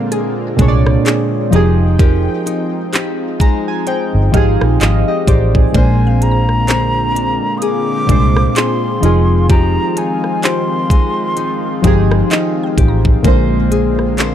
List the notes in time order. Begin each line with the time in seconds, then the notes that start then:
Already playing: A#2 D3 G#3 A#3 C4 D4 F4 G#4 C5
0.12 G#4, closed hi-hat
0.57 C2 A#2 G#3 D4, kick, closed hi-hat
0.62 C#5
0.68 D5
0.86 cross-stick
1.05 G#4, clap, closed hi-hat
1.51 F1 F3 C4 D#4 G4 G5, closed hi-hat
1.56 G#4
1.99 F3 G4 A#4, kick, closed hi-hat
2.46 D#4, closed hi-hat
2.93 G4, clap, closed hi-hat
3.40 G#3 F4 A#5, kick, closed hi-hat
3.68 G#5
3.87 D#4 C5 G5, closed hi-hat
4.15 G1
4.32 G#1 F3 G#3 D#4 G4 F5, kick, closed hi-hat
4.37 G#4
4.61 A#1, cross-stick
4.81 G#1 D#4 G#4 D#5 F5, clap, closed hi-hat
5.08 G4 D#5
5.27 A1 D#4 G4 C5 D5, kick, closed hi-hat
5.55 C4 G#4, kick
5.72 A#1 A#2 D3 G#3 A#3 D4 C5 D5 G#5, kick, closed hi-hat
5.77 C5
6.07 F5
6.21 G#4 A#5, closed hi-hat
6.31 A#5
6.49 cross-stick
6.68 C5, clap, closed hi-hat
7.15 D4, closed hi-hat
7.58 D#6
7.62 G#4 D6, closed hi-hat
8.07 C2 A#2 G#3 D4, kick, closed hi-hat
8.12 C5
8.36 cross-stick
8.56 G#4 C6, clap, closed hi-hat
9.01 F1 D#3 F3 D#4 F4, closed hi-hat
9.05 G#4
9.50 F3 G4 A#5, kick, closed hi-hat
9.97 D#4 G#5, closed hi-hat
10.24 cross-stick
10.43 G4 C5 C6, clap, closed hi-hat
10.90 G#3, kick, closed hi-hat
11.37 D#4, closed hi-hat
11.82 G1 F3 G#3 D#4 G4, kick, closed hi-hat
11.87 G#4
12.12 cross-stick
12.31 D#4 D#5, clap, closed hi-hat
12.63 G5
12.78 A1 G4, kick, closed hi-hat
12.88 A#5
13.05 kick
13.23 A#1 A#2 D3 G#3 A#3 C5, kick, closed hi-hat
13.28 C5
13.71 G#4, closed hi-hat
13.99 cross-stick
14.18 C5, clap, closed hi-hat